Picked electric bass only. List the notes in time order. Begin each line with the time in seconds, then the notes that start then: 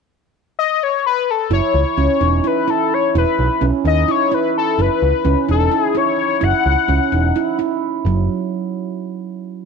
1.50 F#1
1.74 C#2
1.97 C#2
2.21 E1
3.15 E1
3.39 B1
3.62 B1
3.84 D#2
4.78 F#1
5.02 C#2
5.25 C#2
5.49 E1
6.42 F#1
6.66 C#2
6.89 C#2
7.12 E1
8.05 F#1